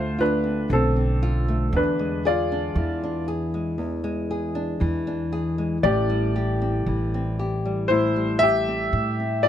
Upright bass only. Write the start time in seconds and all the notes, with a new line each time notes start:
Already playing: D2
0.70 B1
1.73 E2
2.75 E2
4.81 E2
5.84 A1
6.86 A1
8.93 A2